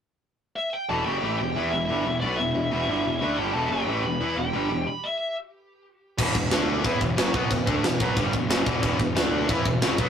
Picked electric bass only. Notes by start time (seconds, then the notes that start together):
0.90 E1
1.06 F#1
1.24 A1
1.41 E1
1.56 E2
1.74 E1
1.90 G1
2.07 E1
2.22 B1
2.40 E1
2.55 E1
2.72 E1
2.88 G1
3.05 E1
3.22 D2
3.38 G1
3.54 E1
3.70 F#1
3.86 A1
4.03 E1
4.20 E2
4.37 E1
4.54 G1
4.70 E1
6.18 E1
6.35 E1
6.53 D2
6.85 E2
7.01 E1
7.18 F#1
7.35 B1
7.51 E1
7.67 D2
7.84 E1
8.00 B1
8.17 G1
8.34 E1
8.50 F#1
8.66 E1
8.83 E1
9.00 E1
9.17 D2
9.49 E2
9.66 E1
9.82 F#1
9.98 B1